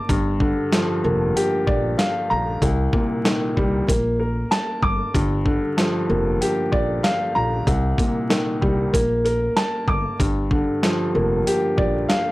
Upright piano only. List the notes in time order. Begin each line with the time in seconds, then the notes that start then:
Already playing: A#3 A#4 A5 D6
0.09 G2
0.40 D3
0.72 F3
1.04 A#3
1.36 G4
1.67 D5
1.98 F5
2.30 A#5
2.62 C2
2.94 A#2
3.25 D#3
3.56 G3
3.88 A#3
4.20 A#4
4.51 A5
4.83 D6
5.14 G2
5.46 D3
5.77 F3
6.09 A#3
6.41 G4
6.72 D5
7.03 F5
7.35 A#5
7.67 C2
7.98 A#2
8.30 D#3
8.61 G3
8.93 A#3
9.25 A#4
9.56 A5
9.88 D6
10.20 G2
10.51 D3
10.83 F3
11.15 A#3
11.47 G4
11.77 D5
12.09 F5